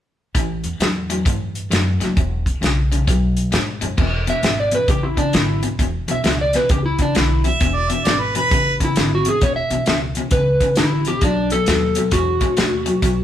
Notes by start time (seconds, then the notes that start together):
0.35 A1 A2 E3, kick, closed hi-hat
0.64 E2, closed hi-hat
0.80 E2 A2 F#3, snare, closed hi-hat
1.10 A2 F#3, closed hi-hat
1.25 G2 A2 E3, kick, closed hi-hat
1.55 closed hi-hat
1.70 F#2 A2 F#3, snare, closed hi-hat
2.00 F#1 A2 F#3, snare, closed hi-hat
2.17 E1 E2 B2, kick, closed hi-hat
2.46 B1, kick, closed hi-hat
2.61 B1 E2 C#3, snare, closed hi-hat
2.92 E2 C#3, closed hi-hat
3.07 B1 B2 F#3, kick, closed hi-hat
3.37 closed hi-hat
3.52 G#2 B2 G#3, snare, closed hi-hat
3.81 F#2 B2 G#3, closed hi-hat
3.98 E1 E2 B2, kick, crash
4.27 E2 B2 E5, closed hi-hat
4.43 G#1 E2 B2, snare, closed hi-hat
4.60 D5
4.71 E2 B2 B4, closed hi-hat
4.88 A1 E2 C#3 G4, kick, closed hi-hat
5.03 E4
5.17 E2 C#3 D4, kick, closed hi-hat
5.33 G#1 E2 D3 E4, snare, closed hi-hat
5.63 E2 B2, closed hi-hat
5.79 E1 E2 B2, kick, closed hi-hat
6.08 B1 E2 B2 E5, closed hi-hat
6.24 C#2 E2 B2, snare, closed hi-hat
6.41 D5
6.53 E2 B2 B4, snare, closed hi-hat
6.69 C#2 E2 C#3 G4, kick, closed hi-hat
6.86 E4
6.99 E2 C#3 D4, kick, closed hi-hat
7.15 B1 E2 D3 E4, snare, closed hi-hat
7.44 E2 B2 E5, closed hi-hat
7.60 E1 E2 B2, kick, closed hi-hat
7.76 D5
7.90 E2 B2 E5, closed hi-hat
8.04 G#1 E2 B2 D5, snare, closed hi-hat
8.20 B4
8.35 E2 B2 B4, closed hi-hat
8.51 A1 E2 C#3, kick, closed hi-hat
8.80 E2 C#3, kick, closed hi-hat
8.84 E4
8.96 G#1 E2 D3, snare, closed hi-hat
9.15 F#4
9.25 E2 B2 G#4, closed hi-hat
9.41 E1 E2 B2 C#5, kick, closed hi-hat
9.56 E5
9.70 B1 E2 B2, closed hi-hat
9.86 C#2 E2 B2, snare, closed hi-hat
10.15 E2 B2, closed hi-hat
10.31 C#2 E2 C#3 B4, kick, closed hi-hat
10.61 E2 C#3, kick, closed hi-hat
10.76 A1 E2 D3 E4, snare, closed hi-hat
11.05 E2 B2 G4, closed hi-hat
11.21 B1 B2 F#3 D4, kick, closed hi-hat
11.50 B2 F#3 A4, closed hi-hat
11.66 D#2 B2 F#3, snare, closed hi-hat
11.95 B2 F#3, closed hi-hat
12.11 E2 B2 G#3 F#4, kick, closed hi-hat
12.41 B2 G#3, kick, closed hi-hat
12.57 D#2 B2 A3, snare, closed hi-hat
12.86 B2 F#3, closed hi-hat
13.02 B1 B2 F#3, kick, closed hi-hat